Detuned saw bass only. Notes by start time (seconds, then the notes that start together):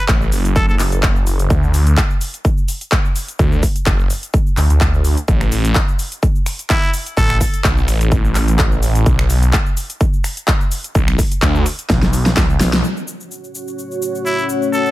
0.09 A1
0.32 F#1
0.79 F#1
1.27 F#1
1.50 D2
1.74 D2
3.39 D2
3.86 F#1
4.57 D2
4.70 D2
4.81 D2
5.28 A1
5.52 A1
7.17 A1
7.64 B1
7.88 A1
8.35 A1
8.83 A1
9.06 B1
9.30 B1
10.95 B1
11.42 D2
11.90 B1
12.37 C#2
12.60 B1